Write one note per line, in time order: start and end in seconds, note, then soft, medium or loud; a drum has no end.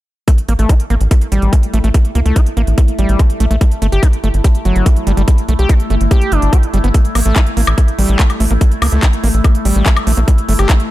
0.28 0.31 A3 medium
0.28 10.91 A3 medium
0.28 10.91 E4 medium
0.28 kick loud
0.28 closed hi-hat medium
0.38 closed hi-hat soft
0.49 0.56 A1 medium
0.49 0.53 A#3 medium
0.49 closed hi-hat medium
0.59 0.66 A1 medium
0.59 0.71 A3 medium
0.59 closed hi-hat soft
0.69 0.74 E4 loud
0.69 kick loud
0.69 closed hi-hat medium
0.80 closed hi-hat soft
0.90 0.97 A1 medium
0.90 0.95 A#3 medium
0.90 closed hi-hat soft
1.01 1.08 A1 medium
1.01 closed hi-hat soft
1.11 1.14 A3 medium
1.11 kick loud
1.11 closed hi-hat loud
1.21 closed hi-hat soft
1.32 1.39 A1 medium
1.32 1.54 G3 medium
1.32 closed hi-hat medium
1.42 1.50 A1 medium
1.42 closed hi-hat soft
1.53 1.56 A3 loud
1.53 kick loud
1.53 closed hi-hat medium
1.63 closed hi-hat soft
1.74 1.81 A1 medium
1.74 1.78 A3 loud
1.74 closed hi-hat medium
1.84 1.91 A1 medium
1.84 1.89 A3 loud
1.84 closed hi-hat soft
1.94 1.97 A3 medium
1.94 kick loud
1.94 closed hi-hat medium
2.05 closed hi-hat soft
2.15 2.22 C#2 medium
2.15 2.20 A#3 medium
2.15 closed hi-hat medium
2.26 2.33 C#2 medium
2.26 2.38 A3 medium
2.26 closed hi-hat soft
2.36 2.41 E4 loud
2.36 kick loud
2.36 closed hi-hat medium
2.46 closed hi-hat soft
2.57 2.64 A1 loud
2.57 2.62 A#3 medium
2.57 closed hi-hat soft
2.67 2.75 A1 medium
2.67 closed hi-hat soft
2.78 2.81 A3 medium
2.78 kick loud
2.78 closed hi-hat medium
2.88 closed hi-hat soft
2.99 3.06 A1 medium
2.99 3.21 G3 medium
2.99 closed hi-hat medium
3.09 3.16 A1 medium
3.09 closed hi-hat soft
3.19 3.22 A3 loud
3.19 kick loud
3.19 closed hi-hat medium
3.30 closed hi-hat soft
3.40 3.47 A#1 medium
3.40 3.45 A3 loud
3.40 closed hi-hat medium
3.51 3.58 A#1 medium
3.51 3.56 A3 loud
3.51 closed hi-hat soft
3.61 3.64 G3 medium
3.61 kick loud
3.61 closed hi-hat medium
3.72 closed hi-hat soft
3.82 3.89 G1 medium
3.82 3.87 A3 medium
3.82 closed hi-hat medium
3.92 4.00 G1 medium
3.92 4.04 G4 medium
3.92 closed hi-hat soft
4.03 4.08 D4 loud
4.03 kick loud
4.03 closed hi-hat medium
4.13 closed hi-hat soft
4.24 4.31 G1 medium
4.24 4.28 A3 medium
4.24 closed hi-hat soft
4.34 4.41 G1 medium
4.34 closed hi-hat soft
4.44 4.47 G4 medium
4.44 kick loud
4.44 closed hi-hat medium
4.55 closed hi-hat soft
4.65 4.72 G1 medium
4.65 4.88 F#3 medium
4.65 closed hi-hat medium
4.76 4.83 G1 medium
4.76 closed hi-hat soft
4.86 4.89 G3 loud
4.86 kick loud
4.86 closed hi-hat medium
4.96 closed hi-hat soft
5.07 5.14 G1 medium
5.07 5.12 G3 loud
5.07 closed hi-hat medium
5.17 5.25 G1 medium
5.17 5.22 G3 loud
5.17 closed hi-hat soft
5.28 5.31 G3 medium
5.28 kick loud
5.28 closed hi-hat medium
5.38 closed hi-hat soft
5.49 5.56 B1 medium
5.49 5.53 A3 medium
5.49 closed hi-hat medium
5.59 5.66 B1 medium
5.59 5.71 G4 medium
5.59 closed hi-hat soft
5.69 5.74 D4 loud
5.69 kick loud
5.69 closed hi-hat medium
5.80 closed hi-hat soft
5.90 5.97 G1 medium
5.90 5.95 A3 medium
5.90 closed hi-hat soft
6.01 6.08 G1 medium
6.01 closed hi-hat soft
6.11 6.33 G4 medium
6.11 kick loud
6.11 closed hi-hat medium
6.21 closed hi-hat soft
6.32 6.39 G1 loud
6.32 6.54 D4 medium
6.32 closed hi-hat medium
6.42 6.50 G1 medium
6.42 closed hi-hat soft
6.53 6.58 G4 medium
6.53 kick loud
6.53 closed hi-hat medium
6.63 closed hi-hat soft
6.74 6.81 G1 medium
6.74 6.79 G3 medium
6.74 closed hi-hat medium
6.84 6.91 G1 medium
6.84 6.89 B3 medium
6.84 closed hi-hat soft
6.94 6.97 A3 medium
6.94 kick loud
6.94 closed hi-hat medium
7.05 closed hi-hat soft
7.15 7.22 A1 medium
7.15 7.20 A#3 medium
7.15 open hi-hat loud
7.15 high woodblock soft
7.26 7.33 A1 medium
7.26 7.38 A3 medium
7.26 closed hi-hat soft
7.36 7.41 E4 loud
7.36 kick loud
7.36 clap loud
7.36 closed hi-hat medium
7.47 closed hi-hat soft
7.57 7.64 A1 medium
7.57 7.62 A#3 medium
7.57 open hi-hat medium
7.67 7.75 A1 medium
7.67 closed hi-hat soft
7.67 high woodblock medium
7.78 7.81 A3 medium
7.78 kick loud
7.78 closed hi-hat medium
7.88 closed hi-hat soft
7.99 8.06 A1 medium
7.99 8.21 G3 medium
7.99 open hi-hat loud
8.09 8.16 A1 medium
8.09 closed hi-hat soft
8.19 8.22 A3 loud
8.19 kick loud
8.19 clap loud
8.19 closed hi-hat medium
8.30 closed hi-hat soft
8.30 high woodblock soft
8.40 8.47 A1 medium
8.40 8.45 A3 loud
8.40 open hi-hat loud
8.51 8.58 A1 medium
8.51 8.54 A#3 medium
8.51 closed hi-hat soft
8.61 8.64 A3 medium
8.61 kick loud
8.61 closed hi-hat medium
8.72 closed hi-hat soft
8.82 8.89 C#2 medium
8.82 8.87 A#3 medium
8.82 open hi-hat medium
8.82 high woodblock medium
8.92 9.00 C#2 medium
8.92 9.04 A3 medium
8.92 closed hi-hat soft
9.03 9.08 E4 loud
9.03 kick loud
9.03 clap loud
9.03 closed hi-hat medium
9.13 closed hi-hat soft
9.24 9.31 A1 medium
9.24 9.28 A#3 medium
9.24 open hi-hat medium
9.34 9.41 A1 medium
9.34 closed hi-hat soft
9.44 9.47 A3 medium
9.44 kick loud
9.44 closed hi-hat medium
9.44 high woodblock soft
9.55 closed hi-hat soft
9.65 9.72 A1 medium
9.65 9.88 G3 medium
9.65 open hi-hat loud
9.76 9.83 A1 medium
9.76 closed hi-hat soft
9.86 9.89 A3 loud
9.86 kick loud
9.86 clap loud
9.86 closed hi-hat medium
9.97 closed hi-hat soft
9.97 high woodblock medium
10.07 10.14 A#1 medium
10.07 10.12 A3 loud
10.07 open hi-hat medium
10.17 10.25 A#1 medium
10.17 10.20 A#3 medium
10.17 closed hi-hat soft
10.28 10.31 G3 medium
10.28 kick loud
10.28 closed hi-hat medium
10.38 closed hi-hat soft
10.49 10.56 G1 medium
10.49 10.53 A3 medium
10.49 open hi-hat medium
10.59 10.66 G1 medium
10.59 10.71 G4 medium
10.59 closed hi-hat soft
10.59 high woodblock soft
10.69 10.74 D4 loud
10.69 kick loud
10.69 clap loud
10.69 closed hi-hat medium
10.80 closed hi-hat soft